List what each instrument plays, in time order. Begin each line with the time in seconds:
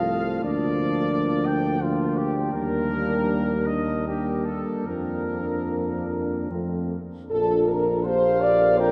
Already playing: tuba C2, trombone F3, euphonium A3, french horn section F4, trumpet section F5
0.42 tuba D2, trombone F3, euphonium A#3, french horn section D4, trumpet section D5
1.45 trumpet section G5
1.80 trombone F3, euphonium A#3, french horn section D4, trumpet section F4
2.16 trumpet section G4
2.52 tuba D#2, trombone G3, euphonium A#3, french horn section D4, trumpet section A#4
3.65 trumpet section D#5
4.04 trombone G3, euphonium A#3, french horn section D4, trumpet section G4
4.44 trumpet section A4
4.86 tuba F2, trombone F3, euphonium A#3, french horn section D4, trumpet section A#4
6.50 tuba F2, trombone F3, euphonium A3, french horn section C4
7.30 tuba A#1, trombone D4, euphonium F4, french horn section A4
7.68 french horn section A#4
8.04 trombone A#3, euphonium G4, french horn section C5, trumpet section F5
8.42 french horn section D5
8.78 trombone C4, euphonium F4, french horn section A#4, trumpet section G5